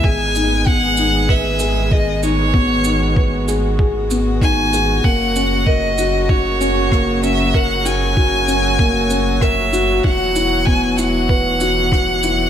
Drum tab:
SH |-x-x-x-x|-x-x-x-x|-x-x-x-x|-x-x-x-x|
SD |--------|--------|------r-|------r-|
BD |o-o-o-o-|o-o-o-o-|o-o-o-o-|o-o-o-o-|

SH |-x-x-x-x|
SD |------r-|
BD |o-o-o-o-|